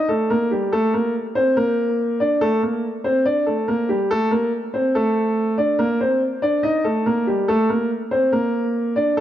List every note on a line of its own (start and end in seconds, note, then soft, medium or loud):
0.09 0.29 A3 medium
0.09 0.28 A4 medium
0.30 0.50 A#3 medium
0.30 0.50 A#4 medium
0.51 0.71 G3 medium
0.51 0.71 G4 medium
0.72 0.92 A3 medium
0.72 0.92 A4 loud
0.93 1.14 A#3 medium
0.93 1.13 A#4 medium
1.35 1.56 C4 medium
1.35 1.55 C5 medium
1.57 2.17 A#3 medium
1.57 2.16 A#4 loud
2.20 2.40 D4 medium
2.20 2.40 D5 medium
2.41 2.61 A3 medium
2.41 2.61 A4 loud
2.62 2.83 A#3 medium
2.62 2.82 A#4 medium
3.04 3.25 C4 medium
3.04 3.24 C5 medium
3.26 3.46 D4 medium
3.26 3.45 D5 medium
3.46 3.67 A3 medium
3.46 3.66 A4 medium
3.68 3.88 A#3 medium
3.68 3.88 A#4 medium
3.89 4.09 G3 medium
3.89 4.09 G4 medium
4.11 4.31 A3 medium
4.11 4.30 A4 loud
4.31 4.51 A#3 medium
4.31 4.51 A#4 medium
4.74 4.94 C4 medium
4.74 4.93 C5 medium
4.95 5.55 A3 medium
4.95 5.54 A4 medium
5.58 5.78 D4 medium
5.58 5.78 D5 medium
5.79 5.99 A#3 medium
5.79 5.99 A#4 loud
6.01 6.21 C4 medium
6.01 6.20 C5 medium
6.42 6.63 D4 medium
6.42 6.62 D5 medium
6.63 6.84 D#4 medium
6.63 6.83 D#5 medium
6.84 7.05 A3 medium
6.84 7.04 A4 medium
7.06 7.26 A#3 medium
7.06 7.26 A#4 medium
7.27 7.47 G3 medium
7.27 7.47 G4 medium
7.48 7.68 A3 medium
7.48 7.68 A4 medium
7.69 7.90 A#3 medium
7.69 7.89 A#4 medium
8.11 8.32 C4 medium
8.11 8.31 C5 medium
8.33 8.93 A#3 medium
8.33 8.92 A#4 medium
8.96 9.16 D4 medium
8.96 9.16 D5 medium
9.17 9.20 A4 loud